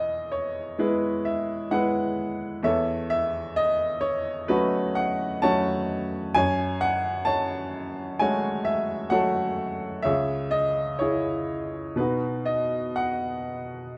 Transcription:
Already playing: E2 G#4 B4 D#5 E5
0.32 C#5
0.78 G#3 B3 E4 G#4 B4
1.25 E5
1.71 G#3 B3 E4 B4 F#5
2.63 E2 A4 C#5 E5
3.10 E5
3.56 D#5
4.01 C#5
4.48 F#3 A3 C#4 F#4 B4
4.95 F#5
5.42 F#3 A3 C#4 C#5 F#5 A5
6.34 F#2 C#5 G#5
6.81 F#5
7.25 C#5 A5
8.19 G#3 A3 F#4 C#5 G#5
8.65 E5
9.10 F#3 A3 F#4 A4 C#5 F#5
10.02 C#2 G#4 C#5 E5
10.51 D#5
10.99 E4 G#4 C#5
11.96 B2 D#4 F#4 B4
12.45 D#5
12.96 F#5

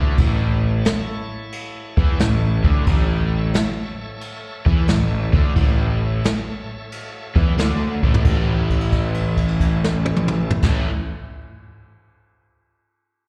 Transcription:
Already playing: D2 D3 C#4 E4 A4
0.18 A1 A2 E4 A4 C#5, kick, crash
0.85 snare, crash
1.52 crash
1.97 E2 E3, kick
2.19 A1 A2, snare, crash
2.64 D2 D3, kick
2.86 A1 A2 A4 C#5 E5, kick, crash
3.54 snare, crash
4.21 crash
4.66 E2 E3, kick
4.88 A1 A2, snare, crash
5.33 D2 D3, kick
5.56 A1 A2 A#4 D5 F5, kick, crash
5.79 A4 C#5 E5
6.24 snare, crash
6.92 crash
7.36 E2 E3, kick
7.58 D2 D3, snare, crash
8.03 A1 A2, kick
8.14 floor tom
8.22 A1 A2 D4 F4 A#4, kick, crash
8.28 E3 A3
8.47 C#4 E4 A4
8.70 kick, crash
8.81 crash
8.92 kick, crash
9.14 crash
9.37 kick, crash
9.48 crash
9.60 kick, crash
9.84 snare
10.05 high tom
10.16 mid tom
10.28 mid tom
10.50 floor tom
10.62 A1 A2 E3 C#4 E4 A4, kick, snare, crash
10.67 A3

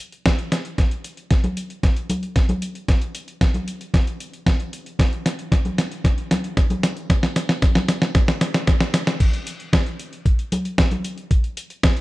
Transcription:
0.12 closed hi-hat
0.26 kick, snare, closed hi-hat
0.39 closed hi-hat
0.52 snare, closed hi-hat
0.65 closed hi-hat
0.78 kick, snare, closed hi-hat
0.91 closed hi-hat
1.04 closed hi-hat
1.17 closed hi-hat
1.31 kick, snare, closed hi-hat
1.44 closed hi-hat, high conga
1.57 closed hi-hat
1.70 closed hi-hat
1.83 kick, snare, closed hi-hat
1.97 closed hi-hat
2.10 closed hi-hat, high conga
2.23 closed hi-hat
2.36 kick, snare, closed hi-hat
2.49 closed hi-hat, high conga
2.62 closed hi-hat
2.75 closed hi-hat
2.88 kick, snare, closed hi-hat
3.02 closed hi-hat
3.15 closed hi-hat
3.28 closed hi-hat
3.41 kick, snare, closed hi-hat
3.54 closed hi-hat, high conga
3.68 closed hi-hat
3.81 closed hi-hat
3.94 kick, snare, closed hi-hat
4.07 closed hi-hat
4.20 closed hi-hat
4.33 closed hi-hat
4.46 kick, snare, closed hi-hat
4.60 closed hi-hat
4.73 closed hi-hat
4.86 closed hi-hat
4.99 kick, snare, closed hi-hat
5.13 closed hi-hat
5.26 snare, closed hi-hat
5.39 closed hi-hat
5.52 kick, snare, closed hi-hat
5.65 closed hi-hat, high conga
5.78 snare, closed hi-hat
5.92 closed hi-hat
6.04 kick, snare, closed hi-hat
6.18 closed hi-hat
6.31 snare, closed hi-hat, high conga
6.44 closed hi-hat
6.57 kick, snare, closed hi-hat
6.70 closed hi-hat, high conga
6.83 snare, closed hi-hat
6.97 closed hi-hat
7.10 kick, snare, closed hi-hat
7.23 snare, closed hi-hat
7.36 snare, closed hi-hat
7.49 snare, closed hi-hat
7.62 kick, snare, closed hi-hat
7.75 snare, closed hi-hat, high conga
7.88 snare, closed hi-hat
8.02 snare, closed hi-hat
8.15 kick, snare, closed hi-hat
8.28 snare, closed hi-hat
8.41 snare, closed hi-hat
8.54 snare, closed hi-hat
8.67 kick, snare, closed hi-hat
8.81 snare, closed hi-hat
8.94 snare, closed hi-hat
9.07 snare, closed hi-hat
9.20 kick, closed hi-hat, crash
9.33 closed hi-hat
9.47 closed hi-hat
9.60 closed hi-hat
9.73 kick, snare, closed hi-hat
9.86 closed hi-hat
9.99 closed hi-hat
10.13 closed hi-hat
10.25 kick, closed hi-hat
10.39 closed hi-hat
10.52 closed hi-hat, high conga
10.65 closed hi-hat
10.78 kick, snare, closed hi-hat
10.91 closed hi-hat, high conga
11.04 closed hi-hat
11.18 closed hi-hat
11.31 kick, closed hi-hat
11.44 closed hi-hat
11.57 closed hi-hat
11.70 closed hi-hat
11.83 kick, snare, closed hi-hat
11.97 closed hi-hat

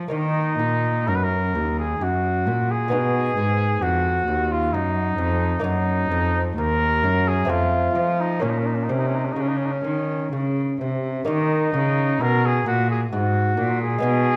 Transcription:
0.08 D#3 A#3 D#4
0.59 A#2
1.08 F#2 A#4
1.15 B4
1.23 A#4
1.55 D#2
1.79 G#4
2.01 F#2 F#4
2.47 A#2
2.71 G#4
2.88 G#3 B3 D#4
2.92 B2
3.37 G#2
3.81 F2 F#4
4.27 D#2
4.51 F4
4.72 F#2 D#4
5.17 F2
5.60 F#2 A#3 D#4
5.64 F#2 D#4
6.10 F2
6.58 D#2 A#4
7.03 F#2
7.28 G#4
7.45 F2 A3 C4
7.49 F2 F4
7.95 F3
8.20 D#4
8.40 A#2 A#3 C#4
8.50 D#4
8.58 C#4
8.66 D#4
8.74 C#4
8.83 D#4
8.89 C3 C#4
8.99 D#4
9.07 C#4
9.15 D#4
9.25 C#4
9.32 D#4
9.36 C#3
9.41 C#4
9.48 D#4
9.56 C#4
9.65 D#4
9.72 C#4
9.84 D#3
10.32 C#3
10.81 C3
11.25 D#3 A#3 D#4
11.74 C#3
12.21 B2 A#4
12.46 G#4
12.66 A#2 F#4
12.90 G#4
13.12 G#2 F#4
13.57 A#2
13.81 G#4
13.99 G#3 B3 D#4
14.03 B2

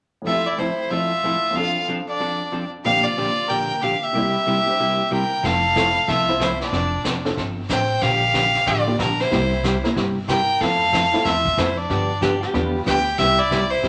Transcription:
0.22 F2 F3
0.26 F3 A3 C4 E4 F4 A4 E5
0.30 G4 E5
0.46 E4 D5
0.58 F3 A3 C4 E4 A4 C5
0.90 F3 A3 C4 E4 F4 A4 D5 E5
1.24 F3 A3 C4 E4 A4
1.50 F2 F3
1.55 F3 C4 D4 F4 A4 F5
1.61 F5
1.88 F3 C4 D4 A4
2.07 D4 D5
2.20 F3 C4 D4 A4
2.52 F3 C4 D4 A4
2.84 A#2 D3 F3 A#3 C4 D4 G4 D5 F5
3.04 F4 D5
3.17 A#2 D3 F3 A#3 D4 G4
3.48 A#2 D3 F3 A#3 D4 G4 A#4 G5
3.81 A#2 D3 F3 A#3 D4 G4 F5
4.01 G4 E5
4.13 C3 G3 A#3 E4 G4
4.17 E4 D5
4.47 C3 G3 A#3 E4 G4
4.66 G3 D4 C5
4.79 C3 G3 A#3 E4 G4
5.11 C3 G3 A#3 E4 G4 A#4 G5
5.43 F1 F3 A3 C4 E4 A4 F5, brush sweep, kick, snare
5.76 F3 A3 C4 E4 F4 A4, kick, snare, hi-hat pedal
6.08 C2 F3 A3 C4 E4 F4 A4 E5, brush sweep, kick, snare
6.28 C4 E4 F4 C5
6.40 F3 A3 C4 E4 A4 C5, kick, snare, hi-hat pedal
6.61 D4 D5, snare
6.72 F1 F3 C4 D4 A4, brush sweep, kick, snare
7.04 F1 F3 C4 D4 A4, kick, snare, hi-hat pedal
7.25 C4 D4 F4 A4, snare
7.37 G1 F3 C4 D4 A4, brush sweep, kick, snare
7.69 A1 F3 C4 D4 A4 C5 G5, kick, snare, hi-hat pedal
8.01 A#1 D3 F3 A#3 D4 G4 F5, brush sweep, kick, snare
8.34 D3 F3 A#3 D4 G4, kick, snare, hi-hat pedal
8.54 snare
8.66 A1 D3 F3 A#3 D4 F4 G4 D5, brush sweep, kick, snare
8.87 A#3 D4 F4 G4
8.99 A#1 D3 F3 A#3 D4 G4 A#4, kick, snare, hi-hat pedal
9.19 E4 C5, snare
9.31 C2 C3 G3 A#3 C4 E4 G4, brush sweep, kick, snare
9.63 C3 G3 A#3 E4 G4, kick, snare, hi-hat pedal
9.83 A#3 C4 E4 A#4, snare
9.96 G1 C3 G3 A#3 E4 G4, brush sweep, kick, snare
10.28 C3 G3 A#3 E4 G4 A#4 G5, kick, snare, hi-hat pedal
10.60 F2 F3 A3 C4 E4 F4 A4 F5, brush sweep, kick, snare
10.92 F3 A3 C4 E4 A4, kick, snare, hi-hat pedal
11.13 A3 C4 E4 F4, snare
11.25 E2 F3 A3 C4 E4 F4 A4 E5, brush sweep, kick, snare
11.45 kick
11.57 F2 F3 A3 C4 E4 A4 C5, kick, snare, hi-hat pedal
11.77 D4 D5
11.89 G2 D3 F3 B3 D4 G4, brush sweep, kick, snare
12.21 D3 F3 B3 D4 G4, kick, snare, hi-hat pedal
12.42 G4, snare
12.53 E2 D3 F3 G3 B3 D4 F4 G4, brush sweep, kick, snare
12.86 D2 D3 F3 B3 D4 G4 G5, kick, snare, hi-hat pedal
13.18 C2 C3 G3 A#3 E4 G4 E5, brush sweep, kick, snare
13.38 E4 D5
13.50 C3 G3 A#3 E4 G4, kick, snare, hi-hat pedal
13.70 E4 C5
13.83 G1 C3 G3 A#3 E4 G4, brush sweep, kick, snare

